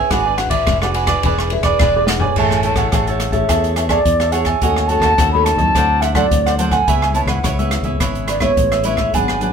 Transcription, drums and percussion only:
0.11 kick, cross-stick, ride
0.38 cross-stick, ride
0.51 kick, ride
0.67 kick, cross-stick, ride
0.82 cross-stick
0.94 ride
1.07 kick, cross-stick, ride
1.23 kick, ride
1.39 cross-stick
1.50 ride
1.63 kick, cross-stick, ride
1.79 kick, cross-stick, ride
2.07 snare
2.19 floor tom
2.36 kick, crash
2.51 cross-stick
2.63 closed hi-hat
2.76 kick, cross-stick, closed hi-hat
2.92 kick, cross-stick, closed hi-hat
3.07 closed hi-hat
3.20 cross-stick, closed hi-hat
3.33 kick, closed hi-hat
3.49 kick, cross-stick, closed hi-hat
3.64 closed hi-hat
3.76 cross-stick, closed hi-hat
3.89 kick, cross-stick, closed hi-hat
4.05 kick, closed hi-hat
4.20 cross-stick, closed hi-hat
4.32 closed hi-hat
4.45 kick, cross-stick, closed hi-hat
4.62 kick, closed hi-hat
4.76 cross-stick
4.89 closed hi-hat
5.02 kick, cross-stick, closed hi-hat
5.18 kick, cross-stick, closed hi-hat
5.46 cross-stick, closed hi-hat
5.59 kick, closed hi-hat
5.75 kick, cross-stick, closed hi-hat
6.02 cross-stick, closed hi-hat
6.15 kick, cross-stick, closed hi-hat
6.31 kick, closed hi-hat
6.47 cross-stick, closed hi-hat
6.59 closed hi-hat
6.71 kick, cross-stick, closed hi-hat
6.88 kick, closed hi-hat
7.02 cross-stick
7.15 closed hi-hat
7.28 kick, cross-stick, closed hi-hat
7.44 kick, cross-stick, closed hi-hat
7.59 closed hi-hat
7.71 cross-stick, closed hi-hat
7.84 kick, closed hi-hat
8.00 kick, cross-stick, closed hi-hat
8.15 closed hi-hat
8.28 cross-stick, closed hi-hat
8.40 kick, cross-stick, closed hi-hat
8.57 kick, closed hi-hat
8.72 cross-stick, closed hi-hat
8.84 closed hi-hat
8.97 kick, cross-stick, closed hi-hat
9.14 kick, closed hi-hat
9.28 cross-stick
9.41 closed hi-hat

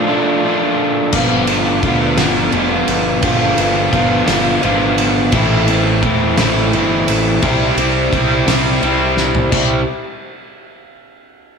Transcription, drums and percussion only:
1.12 kick, crash
1.47 ride
1.83 kick, ride
2.18 snare, ride
2.52 ride
2.88 ride
3.22 kick, ride
3.58 ride
3.93 kick, ride
4.28 snare, ride
4.63 ride
4.98 ride
5.32 kick, ride
5.68 ride
6.03 kick, ride
6.38 snare, ride
6.73 ride
7.08 ride
7.42 kick, ride
7.78 ride
8.13 kick, ride
8.48 snare, ride
8.83 ride
9.17 snare
9.35 floor tom
9.52 kick, crash

